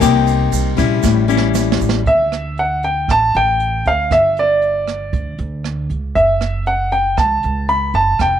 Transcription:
0.00 C2 C3 A#3 D#4 G4, kick, cross-stick, ride, shaker
0.27 ride, shaker
0.52 C2, ride, shaker
0.77 A#1 G3 C#4 E4, kick, cross-stick, ride, shaker
1.03 A1 A2, kick, snare, shaker
1.28 G3 C#4 E4, shaker
1.37 snare
1.55 snare, shaker
1.72 snare
1.81 A1, shaker
1.89 snare
2.06 D2 E5, kick, closed hi-hat
2.32 cross-stick, closed hi-hat
2.57 F#5, closed hi-hat
2.83 G5, closed hi-hat
3.08 A1 A5, kick, cross-stick, closed hi-hat
3.34 A1 G5, closed hi-hat
3.60 closed hi-hat
3.85 D2 F5, closed hi-hat
4.11 G1 E5, kick, cross-stick, closed hi-hat
4.37 D5, closed hi-hat
4.62 closed hi-hat
4.87 cross-stick, closed hi-hat
5.13 D2, kick, closed hi-hat
5.38 D2, closed hi-hat
5.64 cross-stick, closed hi-hat
5.90 C#2, closed hi-hat
6.15 F#1 E5, kick, closed hi-hat
6.41 cross-stick, closed hi-hat
6.66 F#5, closed hi-hat
6.91 G5, closed hi-hat
7.17 C#2 A5, kick, cross-stick, closed hi-hat
7.43 C#2, closed hi-hat
7.68 B5, closed hi-hat
7.94 F#1 A5, closed hi-hat
8.19 F1 G5, kick, cross-stick, closed hi-hat

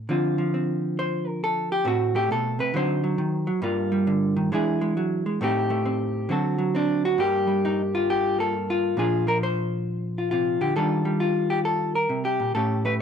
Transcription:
0.09 D3 F3 C4 F4
0.38 F3
0.54 C4
0.99 C5
1.27 A#4
1.44 A4
1.72 G4
1.85 A2 A3 C4 F#4
2.15 A3 G4
2.31 B2 A4
2.59 C3 B4
2.74 D3 F#3 C4 D#4 C5
3.04 F#3
3.18 D#3
3.47 F#3
3.62 G2 G3 A#3 F4
3.92 G3
4.07 D3
4.37 D#3
4.52 E3 G#3 D4 E4 G#4
4.81 G#3
4.97 F#3
5.26 G#3
5.41 A2 A3 C4 D#4 G4
5.70 A3
5.85 C4
6.29 D3 F#3 C4 F#4 A4
6.58 F#3
6.75 C4 D4
7.05 F#4
7.18 G2 G3 A#3 G4
7.47 G3
7.65 D#4
7.95 F4
8.10 G4
8.39 A#3 A4
8.70 F4
8.97 A#2 F3 D4 F4 G#4
9.27 F3 A#4
9.43 C5
10.18 F4
10.31 C3 F4
10.61 D3 G4
10.76 D#3 G3 D4 F4 A4
11.05 G3
11.20 F4
11.50 G4
11.65 A4
11.95 A#4
12.09 C3
12.25 G4
12.40 A#2
12.55 A2 A3 C#4 G4 A4
12.85 A3 B4

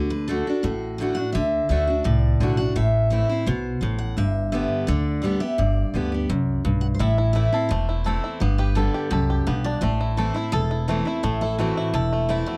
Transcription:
Already playing: D2 D3
0.10 B4
0.28 D3 A3 D4 F#4 A4
0.47 D4 F#4
0.63 A1 A2 F#4
0.98 D3 A3 D4 F#4
1.02 F#4
1.15 F#4 F#5
1.20 D4
1.32 D2 D3 E5
1.69 D2 D3 A3 D4 F#4 E5
1.87 D4 F#4
2.04 C2 A2 D5
2.40 B1 D3 A3 D4 F#4 D5
2.57 D4 F#4 F#5
2.76 A1 A2 E5
3.10 E3 A3 C4 E4 E5
3.29 C4 E4
3.46 B1 B2 C5
3.81 A1 A2 C5
3.98 F#5
4.17 G1 G2 E5
4.52 D3 G3 B3 G4 E5
4.87 D2 D3 D5
5.22 D3 G3 B3 G4 D5
5.40 B3 G4 E5
5.58 G1 G2 D5
5.94 D2 D3 G3 B3 G4
6.12 B3 G4
6.30 C2 F#2
6.65 B1 G2
6.81 F#5
6.94 C5
6.99 A1 A2 E4 E5
7.18 E4
7.33 E3 A3 C4 E4 E5
7.53 C4 E4 A4
7.69 E1 E2 A3 C5
7.89 E4
8.04 E3 A3 C4 E4 A4 C5
8.24 E4
8.40 G1 G2 B3 G4
8.58 G4 B4
8.75 D3 G3 B3 G4 A4
8.94 G4
9.10 C2 F#2 G4 A4
9.30 G4
9.47 B1 G2 B3 G4
9.64 D4 D5
9.81 A1 A2 A3 C5
10.01 E4
10.17 E3 A3 C4 E4 A4 C5
10.34 C4 E4
10.52 E1 E2 A4
10.71 E4
10.88 E3 A3 C4 E4 A4
11.05 C4 E4
11.23 A1 A2 A3 E4
11.41 E4 A4
11.58 E3 A3 C4 E4 F#4
11.77 E4
11.94 E1 E2 E4 A4
12.13 A3
12.29 E3 A3 C4 E4
12.46 A3 F#4

